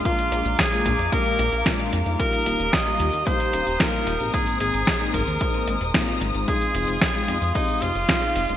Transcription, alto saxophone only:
\new Staff \with { instrumentName = "Alto saxophone" } { \time 4/4 \key f \dorian \tempo 4 = 112 f'4 aes'4 bes'4. r8 | bes'4 ees''4 c''4 bes'4 | aes'8 aes'4 bes'4. r4 | aes'4 aes'4 ees'8 f'4. | }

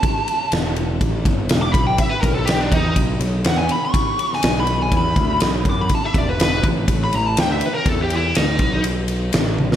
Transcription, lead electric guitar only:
\new Staff \with { instrumentName = "Lead electric guitar" } { \time 4/4 \key b \dorian \tempo 4 = 123 a''4 r2 r16 d'''16 b''16 g''16 | e''16 b'16 ais'16 a'16 g'16 d'16 dis'8 r4 fis''16 gis''16 b''16 cis'''16~ | cis'''8. gis''8 b''8 gis''16 b''4 r8 d'''16 b''16 | a''16 e''16 d''16 b'16 b'8 r8. b''16 ais''16 a''16 g''16 e''16 b'16 ais'16 |
a'16 g'16 e'8 dis'4 r2 | }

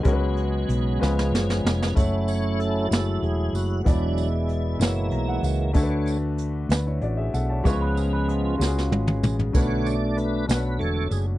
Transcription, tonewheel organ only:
<<
  \new Staff \with { instrumentName = "Tonewheel organ" } { \time 6/8 \key cis \phrygian \tempo 4. = 63 <gis b cis' gis'>2. | \key fis \minor e'8 cis''8 a'8 a'8 gis'8 fis'8 | e'2~ e'8 r8 | r2. |
r2. | fis'8 d''8 b'8 b'8 a'8 gis'8 | }
  \new Staff \with { instrumentName = "Tonewheel organ" } { \clef bass \time 6/8 \key cis \phrygian << { fis4. eis4. | \key fis \minor cis'4. r4. | b,2~ b,8 r8 | r2. |
r2. | d'4. r4. | } \\ { r2. | <fis a>2. | <fis gis d'>8 r4 <e gis ais>4. | <d a cis''>8 r2 r8 |
<eis gis b>4. r4. | <d a cis''>8 r4. <d a cis''>8 r8 | } >> }
>>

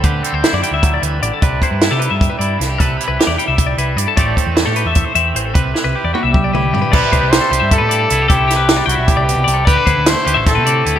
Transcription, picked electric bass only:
\new Staff \with { instrumentName = "Picked electric bass" } { \clef bass \time 7/8 \key c \major \tempo 4 = 152 d,8 r16 d,16 r16 fis,16 r16 d,8. d,8 a,,16 r16 | c,8 r16 g,8 c8 g,8 r16 g,8 c,8 | c,8 r16 c,16 r16 e,16 r16 c,8. c,8 g,16 r16 | a,,8 r16 e,8 a,8 e,8 r16 e,8 a,,8 |
c,8 r16 c,16 r16 e,16 r16 c,8. c,8 g,16 r16 | c,16 r16 c,16 c,8 r16 c,16 g,8 a,8. c,8 | c,4. c,16 b,,8 c,8 c,16 c,8 | d,16 r16 d,16 d,8 r16 d,16 a,,8 c8. d,8 | }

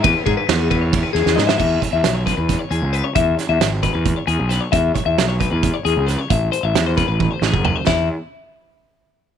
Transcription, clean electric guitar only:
\new Staff \with { instrumentName = "Clean electric guitar" } { \time 7/8 \key e \major \tempo 4 = 134 b'8 gis'16 b'8 gis'16 b'16 cis''8 b'16 gis'8 dis''16 e''16 | e''8 cis''16 e''8 cis''16 b'16 b'8 cis''16 gis'8 b'16 cis''16 | e''8 cis''16 e''8 cis''16 b'16 b'8 cis''16 gis'8 b'16 cis''16 | e''8 cis''16 e''8 cis''16 b'16 b'8 cis''16 gis'8 b'16 cis''16 |
e''8 c''16 e''8 c''16 b'16 b'8 c''16 gis'8 b'16 c''16 | e'8 r2. | }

